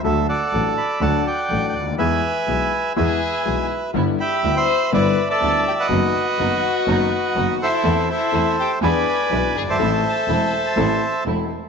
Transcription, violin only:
X:1
M:4/4
L:1/16
Q:1/4=123
K:Am
V:1 name="Violin"
z16 | z8 ^G6 z2 | z2 G3 c3 B3 A3 G ^F- | ^F12- F2 E2- |
E2 E4 G2 B6 ^G A- | A12 z4 |]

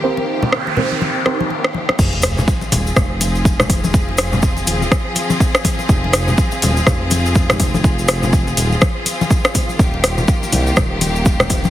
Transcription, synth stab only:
X:1
M:4/4
L:1/8
Q:"Swing 16ths" 1/4=123
K:Fm
V:1 name="Synth stab"
[CEGBc]3 [CEGBc]2 [CEGBc] z2 | z8 | z8 | z8 |
z8 | z8 |]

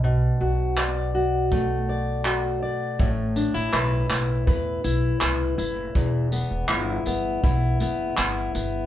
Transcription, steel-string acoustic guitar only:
X:1
M:4/4
L:1/16
Q:1/4=81
K:Ador
V:1 name="Steel-string acoustic guitar"
B,,2 F2 d2 F2 A,2 d2 F2 d2 | A,,2 D E B2 E2 B2 E2 B2 E2 | E,,2 B,2 E2 B,2 E2 B,2 E2 B,2 |]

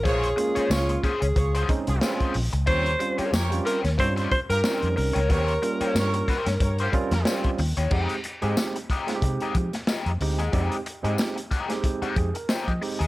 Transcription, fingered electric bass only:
X:1
M:4/4
L:1/16
Q:"Swing 16ths" 1/4=92
K:Fm
V:1 name="Fingered electric bass" clef=bass
B,,,2 z2 D,,2 z D,, D,,2 z C,, z2 B,,, D,, | E,,2 z2 F,,2 z E,, G,,2 z G,, z F,, C,, D,, | E,,2 z2 G,,2 z G,, G,,2 z F,, z2 E,, E,, | F,, z2 A,, z4 C, z F, z2 F,, =D,, E,, |
F,, z2 A,, z6 F,, z2 F, z E,, |]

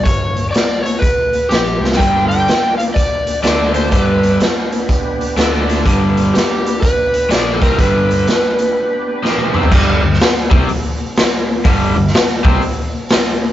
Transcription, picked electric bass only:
X:1
M:4/4
L:1/8
Q:"Swing" 1/4=124
K:G
V:1 name="Picked electric bass" clef=bass
G,,,2 z4 _B,,, C,, | G,,,2 z4 D,,2 | G,,,2 z4 D,,2 | G,,,2 z4 _B,,, C,, |
G,,,2 z6 | G,,, G,,, z C,, z4 | G,,, G,,, z C,, z4 |]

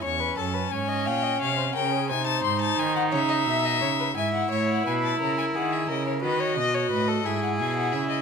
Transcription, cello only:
X:1
M:6/8
L:1/8
Q:3/8=58
K:C#m
V:1 name="Cello" clef=bass
E,, F,, G,, ^A,, ^B,, C, | ^B,, G,, D, C, =B,, C, | [K:E] G,, A,, B,, C, D, C, | D, B,, A,, G,, B,, C, |]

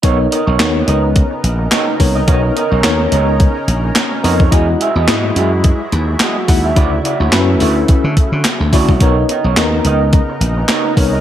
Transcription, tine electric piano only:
X:1
M:4/4
L:1/16
Q:"Swing 16ths" 1/4=107
K:B
V:1 name="Tine electric piano"
[B,DAc]2 z2 [B,DAc]4- [B,DAc] z4 z [B,DAc]2 | [B,DAc]2 z2 [B,DAc]4- [B,DAc] z4 z [B,DAd]2 | [G,EFd]2 z2 [G,EFd]4- [G,EFd] z4 z [G,EFf]2 | [C,EF=d]2 z2 [CEFB]4- [CEFB] z4 z [CEFd]2 |
[B,DAc]2 z2 [B,DAd]4- [B,DAd] z4 z [B,DAc]2 |]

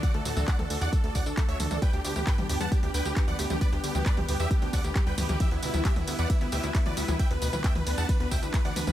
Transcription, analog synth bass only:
X:1
M:4/4
L:1/16
Q:1/4=134
K:Glyd
V:1 name="Analog synth bass" clef=bass
z D,, D,, D,, z D,, D,, E,, z D,, D,, D,, z D,, D,, D,, | z D,, D,, D,, z D,, D,, E,, z D,, D,, D,, z D,, D,, D,, | z D,, D,, D,, z D,, D,, E,, z D,, D,, D,, z D,, D,, D,, | z D,, D,, D,, z D,, D,, E,, z D,, D,, D,, z D,, D,, D,, |
z D,, D,, D,, z D,, D,, E,, z D,, D,, D,, z D,, D,, D,, |]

